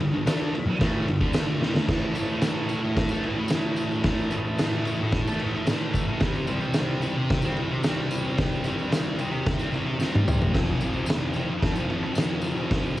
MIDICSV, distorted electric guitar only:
0, 0, Header, 1, 3, 480
1, 0, Start_track
1, 0, Key_signature, 0, "minor"
1, 0, Tempo, 541028
1, 1674, Time_signature, 4, 2, 24, 8
1, 11534, End_track
2, 0, Start_track
2, 0, Title_t, "Distorted electric guitar"
2, 0, Program_c, 0, 30
2, 3, Note_on_c, 0, 43, 67
2, 7, Note_on_c, 0, 50, 73
2, 104, Note_off_c, 0, 43, 0
2, 113, Note_off_c, 0, 50, 0
2, 115, Note_on_c, 0, 43, 58
2, 123, Note_on_c, 0, 50, 70
2, 219, Note_off_c, 0, 50, 0
2, 229, Note_on_c, 0, 50, 103
2, 235, Note_off_c, 0, 43, 0
2, 237, Note_on_c, 0, 57, 105
2, 242, Note_on_c, 0, 62, 108
2, 465, Note_off_c, 0, 50, 0
2, 469, Note_off_c, 0, 57, 0
2, 472, Note_off_c, 0, 62, 0
2, 703, Note_on_c, 0, 45, 96
2, 710, Note_on_c, 0, 52, 94
2, 715, Note_on_c, 0, 57, 111
2, 941, Note_off_c, 0, 45, 0
2, 945, Note_off_c, 0, 52, 0
2, 948, Note_off_c, 0, 57, 0
2, 950, Note_on_c, 0, 43, 69
2, 955, Note_on_c, 0, 50, 70
2, 1059, Note_off_c, 0, 50, 0
2, 1070, Note_on_c, 0, 50, 90
2, 1072, Note_off_c, 0, 43, 0
2, 1076, Note_on_c, 0, 57, 102
2, 1086, Note_on_c, 0, 62, 93
2, 1294, Note_off_c, 0, 50, 0
2, 1304, Note_on_c, 0, 50, 96
2, 1308, Note_off_c, 0, 57, 0
2, 1313, Note_off_c, 0, 62, 0
2, 1325, Note_on_c, 0, 57, 95
2, 1422, Note_off_c, 0, 50, 0
2, 1429, Note_on_c, 0, 45, 92
2, 1433, Note_off_c, 0, 57, 0
2, 1447, Note_on_c, 0, 52, 95
2, 1543, Note_off_c, 0, 45, 0
2, 1546, Note_on_c, 0, 50, 87
2, 1553, Note_off_c, 0, 52, 0
2, 1559, Note_on_c, 0, 57, 95
2, 1660, Note_off_c, 0, 50, 0
2, 1663, Note_on_c, 0, 45, 86
2, 1669, Note_off_c, 0, 57, 0
2, 1685, Note_on_c, 0, 52, 86
2, 1701, Note_on_c, 0, 57, 84
2, 1899, Note_off_c, 0, 45, 0
2, 1903, Note_on_c, 0, 45, 66
2, 1924, Note_off_c, 0, 52, 0
2, 1927, Note_on_c, 0, 52, 77
2, 1940, Note_off_c, 0, 57, 0
2, 1944, Note_on_c, 0, 57, 80
2, 2048, Note_off_c, 0, 57, 0
2, 2051, Note_on_c, 0, 57, 67
2, 2088, Note_off_c, 0, 52, 0
2, 2092, Note_on_c, 0, 52, 56
2, 2163, Note_off_c, 0, 45, 0
2, 2167, Note_on_c, 0, 45, 88
2, 2186, Note_off_c, 0, 52, 0
2, 2190, Note_on_c, 0, 52, 105
2, 2208, Note_off_c, 0, 57, 0
2, 2212, Note_on_c, 0, 57, 107
2, 2397, Note_off_c, 0, 45, 0
2, 2401, Note_on_c, 0, 45, 73
2, 2422, Note_off_c, 0, 52, 0
2, 2426, Note_on_c, 0, 52, 73
2, 2437, Note_off_c, 0, 57, 0
2, 2441, Note_on_c, 0, 57, 84
2, 2507, Note_off_c, 0, 57, 0
2, 2521, Note_off_c, 0, 52, 0
2, 2754, Note_on_c, 0, 57, 68
2, 2757, Note_off_c, 0, 45, 0
2, 2799, Note_on_c, 0, 52, 58
2, 2882, Note_on_c, 0, 45, 75
2, 2895, Note_off_c, 0, 52, 0
2, 2898, Note_on_c, 0, 52, 75
2, 2913, Note_off_c, 0, 57, 0
2, 2924, Note_on_c, 0, 57, 86
2, 2996, Note_off_c, 0, 57, 0
2, 3013, Note_off_c, 0, 52, 0
2, 3124, Note_off_c, 0, 45, 0
2, 3134, Note_on_c, 0, 45, 91
2, 3153, Note_on_c, 0, 52, 86
2, 3164, Note_on_c, 0, 57, 94
2, 3482, Note_off_c, 0, 57, 0
2, 3492, Note_on_c, 0, 57, 69
2, 3533, Note_off_c, 0, 52, 0
2, 3536, Note_on_c, 0, 52, 55
2, 3595, Note_off_c, 0, 45, 0
2, 3606, Note_on_c, 0, 45, 90
2, 3619, Note_off_c, 0, 52, 0
2, 3622, Note_on_c, 0, 52, 88
2, 3628, Note_off_c, 0, 57, 0
2, 3639, Note_on_c, 0, 57, 90
2, 3820, Note_off_c, 0, 45, 0
2, 3831, Note_on_c, 0, 45, 68
2, 3852, Note_off_c, 0, 52, 0
2, 3855, Note_on_c, 0, 52, 76
2, 3867, Note_off_c, 0, 57, 0
2, 3877, Note_on_c, 0, 57, 73
2, 3952, Note_off_c, 0, 57, 0
2, 3963, Note_on_c, 0, 57, 64
2, 3995, Note_off_c, 0, 52, 0
2, 3999, Note_on_c, 0, 52, 58
2, 4078, Note_off_c, 0, 45, 0
2, 4089, Note_on_c, 0, 45, 102
2, 4112, Note_off_c, 0, 52, 0
2, 4116, Note_on_c, 0, 52, 92
2, 4121, Note_off_c, 0, 57, 0
2, 4131, Note_on_c, 0, 57, 95
2, 4298, Note_off_c, 0, 45, 0
2, 4309, Note_on_c, 0, 45, 75
2, 4335, Note_off_c, 0, 52, 0
2, 4338, Note_on_c, 0, 52, 76
2, 4342, Note_off_c, 0, 57, 0
2, 4353, Note_on_c, 0, 57, 76
2, 4434, Note_off_c, 0, 57, 0
2, 4449, Note_off_c, 0, 52, 0
2, 4671, Note_off_c, 0, 45, 0
2, 4681, Note_on_c, 0, 57, 73
2, 4733, Note_on_c, 0, 52, 55
2, 4791, Note_on_c, 0, 45, 77
2, 4814, Note_off_c, 0, 52, 0
2, 4817, Note_on_c, 0, 52, 82
2, 4822, Note_off_c, 0, 57, 0
2, 4832, Note_on_c, 0, 57, 85
2, 4926, Note_off_c, 0, 57, 0
2, 4937, Note_off_c, 0, 52, 0
2, 5036, Note_off_c, 0, 45, 0
2, 5047, Note_on_c, 0, 45, 86
2, 5069, Note_on_c, 0, 52, 92
2, 5084, Note_on_c, 0, 57, 106
2, 5386, Note_off_c, 0, 57, 0
2, 5396, Note_on_c, 0, 57, 67
2, 5439, Note_off_c, 0, 52, 0
2, 5442, Note_on_c, 0, 52, 60
2, 5501, Note_off_c, 0, 57, 0
2, 5506, Note_off_c, 0, 45, 0
2, 5515, Note_on_c, 0, 48, 88
2, 5525, Note_off_c, 0, 52, 0
2, 5529, Note_on_c, 0, 55, 95
2, 5549, Note_on_c, 0, 60, 93
2, 5746, Note_off_c, 0, 48, 0
2, 5750, Note_on_c, 0, 48, 75
2, 5770, Note_off_c, 0, 55, 0
2, 5774, Note_on_c, 0, 55, 70
2, 5784, Note_off_c, 0, 60, 0
2, 5788, Note_on_c, 0, 60, 75
2, 5864, Note_off_c, 0, 60, 0
2, 5868, Note_on_c, 0, 60, 65
2, 5912, Note_off_c, 0, 55, 0
2, 5915, Note_on_c, 0, 55, 59
2, 5992, Note_off_c, 0, 48, 0
2, 5996, Note_on_c, 0, 48, 91
2, 6010, Note_off_c, 0, 55, 0
2, 6013, Note_on_c, 0, 55, 99
2, 6028, Note_off_c, 0, 60, 0
2, 6031, Note_on_c, 0, 60, 102
2, 6230, Note_off_c, 0, 48, 0
2, 6233, Note_on_c, 0, 48, 71
2, 6247, Note_off_c, 0, 55, 0
2, 6251, Note_on_c, 0, 55, 73
2, 6270, Note_off_c, 0, 60, 0
2, 6274, Note_on_c, 0, 60, 83
2, 6353, Note_off_c, 0, 55, 0
2, 6353, Note_off_c, 0, 60, 0
2, 6594, Note_off_c, 0, 48, 0
2, 6606, Note_on_c, 0, 60, 75
2, 6640, Note_on_c, 0, 55, 63
2, 6725, Note_on_c, 0, 48, 72
2, 6733, Note_off_c, 0, 55, 0
2, 6743, Note_on_c, 0, 55, 77
2, 6760, Note_off_c, 0, 60, 0
2, 6763, Note_on_c, 0, 60, 89
2, 6842, Note_off_c, 0, 55, 0
2, 6842, Note_off_c, 0, 60, 0
2, 6938, Note_off_c, 0, 48, 0
2, 6948, Note_on_c, 0, 48, 88
2, 6976, Note_on_c, 0, 55, 101
2, 6991, Note_on_c, 0, 60, 103
2, 7313, Note_off_c, 0, 60, 0
2, 7316, Note_on_c, 0, 60, 71
2, 7341, Note_off_c, 0, 55, 0
2, 7352, Note_on_c, 0, 55, 55
2, 7424, Note_off_c, 0, 48, 0
2, 7435, Note_on_c, 0, 48, 88
2, 7443, Note_off_c, 0, 55, 0
2, 7454, Note_on_c, 0, 55, 99
2, 7464, Note_off_c, 0, 60, 0
2, 7468, Note_on_c, 0, 60, 102
2, 7669, Note_off_c, 0, 48, 0
2, 7680, Note_on_c, 0, 48, 68
2, 7689, Note_off_c, 0, 55, 0
2, 7699, Note_on_c, 0, 55, 80
2, 7716, Note_off_c, 0, 60, 0
2, 7720, Note_on_c, 0, 60, 72
2, 7788, Note_off_c, 0, 60, 0
2, 7792, Note_on_c, 0, 60, 65
2, 7816, Note_off_c, 0, 55, 0
2, 7826, Note_on_c, 0, 55, 62
2, 7887, Note_off_c, 0, 48, 0
2, 7898, Note_on_c, 0, 48, 96
2, 7905, Note_off_c, 0, 55, 0
2, 7916, Note_on_c, 0, 55, 103
2, 7928, Note_off_c, 0, 60, 0
2, 7932, Note_on_c, 0, 60, 99
2, 8126, Note_off_c, 0, 48, 0
2, 8137, Note_on_c, 0, 48, 73
2, 8148, Note_off_c, 0, 55, 0
2, 8158, Note_on_c, 0, 55, 71
2, 8172, Note_off_c, 0, 60, 0
2, 8175, Note_on_c, 0, 60, 80
2, 8266, Note_off_c, 0, 55, 0
2, 8268, Note_off_c, 0, 60, 0
2, 8497, Note_on_c, 0, 60, 70
2, 8506, Note_off_c, 0, 48, 0
2, 8530, Note_on_c, 0, 55, 56
2, 8614, Note_on_c, 0, 48, 75
2, 8624, Note_off_c, 0, 55, 0
2, 8634, Note_on_c, 0, 55, 75
2, 8651, Note_off_c, 0, 60, 0
2, 8654, Note_on_c, 0, 60, 77
2, 8740, Note_off_c, 0, 55, 0
2, 8740, Note_off_c, 0, 60, 0
2, 8856, Note_off_c, 0, 48, 0
2, 8866, Note_on_c, 0, 48, 91
2, 8885, Note_on_c, 0, 55, 101
2, 8908, Note_on_c, 0, 60, 97
2, 9218, Note_off_c, 0, 60, 0
2, 9222, Note_on_c, 0, 60, 59
2, 9251, Note_off_c, 0, 55, 0
2, 9262, Note_on_c, 0, 55, 53
2, 9336, Note_off_c, 0, 48, 0
2, 9344, Note_on_c, 0, 41, 81
2, 9354, Note_off_c, 0, 55, 0
2, 9362, Note_on_c, 0, 48, 82
2, 9387, Note_on_c, 0, 53, 96
2, 9597, Note_off_c, 0, 41, 0
2, 9601, Note_on_c, 0, 41, 75
2, 9610, Note_off_c, 0, 48, 0
2, 9621, Note_on_c, 0, 48, 72
2, 9641, Note_off_c, 0, 53, 0
2, 9644, Note_on_c, 0, 53, 74
2, 9711, Note_off_c, 0, 53, 0
2, 9715, Note_on_c, 0, 53, 70
2, 9741, Note_off_c, 0, 48, 0
2, 9752, Note_on_c, 0, 48, 57
2, 9816, Note_off_c, 0, 41, 0
2, 9820, Note_on_c, 0, 41, 93
2, 9832, Note_off_c, 0, 48, 0
2, 9843, Note_on_c, 0, 48, 96
2, 9859, Note_off_c, 0, 53, 0
2, 9862, Note_on_c, 0, 53, 109
2, 10067, Note_off_c, 0, 41, 0
2, 10071, Note_on_c, 0, 41, 72
2, 10082, Note_off_c, 0, 48, 0
2, 10093, Note_on_c, 0, 48, 84
2, 10104, Note_off_c, 0, 53, 0
2, 10108, Note_on_c, 0, 53, 81
2, 10188, Note_off_c, 0, 53, 0
2, 10195, Note_off_c, 0, 48, 0
2, 10427, Note_on_c, 0, 53, 67
2, 10433, Note_off_c, 0, 41, 0
2, 10473, Note_on_c, 0, 48, 59
2, 10545, Note_on_c, 0, 41, 76
2, 10559, Note_off_c, 0, 48, 0
2, 10570, Note_on_c, 0, 48, 81
2, 10579, Note_off_c, 0, 53, 0
2, 10589, Note_on_c, 0, 53, 80
2, 10665, Note_off_c, 0, 53, 0
2, 10682, Note_off_c, 0, 48, 0
2, 10767, Note_off_c, 0, 41, 0
2, 10778, Note_on_c, 0, 41, 98
2, 10805, Note_on_c, 0, 48, 99
2, 10825, Note_on_c, 0, 53, 102
2, 11142, Note_off_c, 0, 53, 0
2, 11152, Note_on_c, 0, 53, 76
2, 11183, Note_off_c, 0, 48, 0
2, 11193, Note_on_c, 0, 48, 58
2, 11262, Note_off_c, 0, 41, 0
2, 11272, Note_on_c, 0, 41, 91
2, 11281, Note_off_c, 0, 48, 0
2, 11292, Note_on_c, 0, 48, 93
2, 11301, Note_off_c, 0, 53, 0
2, 11312, Note_on_c, 0, 53, 91
2, 11504, Note_off_c, 0, 41, 0
2, 11523, Note_off_c, 0, 48, 0
2, 11534, Note_off_c, 0, 53, 0
2, 11534, Note_off_c, 0, 60, 0
2, 11534, End_track
3, 0, Start_track
3, 0, Title_t, "Muted distorted electric guitar strokes"
3, 467, Note_on_c, 9, 29, 59
3, 555, Note_off_c, 9, 29, 0
3, 583, Note_on_c, 9, 29, 56
3, 671, Note_off_c, 9, 29, 0
3, 2518, Note_on_c, 9, 29, 47
3, 2606, Note_off_c, 9, 29, 0
3, 3007, Note_on_c, 9, 29, 54
3, 3096, Note_off_c, 9, 29, 0
3, 4445, Note_on_c, 9, 29, 47
3, 4533, Note_off_c, 9, 29, 0
3, 4936, Note_on_c, 9, 29, 56
3, 5025, Note_off_c, 9, 29, 0
3, 6357, Note_on_c, 9, 29, 52
3, 6445, Note_off_c, 9, 29, 0
3, 6846, Note_on_c, 9, 29, 50
3, 6935, Note_off_c, 9, 29, 0
3, 8272, Note_on_c, 9, 29, 49
3, 8361, Note_off_c, 9, 29, 0
3, 8744, Note_on_c, 9, 29, 56
3, 8832, Note_off_c, 9, 29, 0
3, 10198, Note_on_c, 9, 29, 52
3, 10287, Note_off_c, 9, 29, 0
3, 10676, Note_on_c, 9, 29, 53
3, 10765, Note_off_c, 9, 29, 0
3, 11534, End_track
0, 0, End_of_file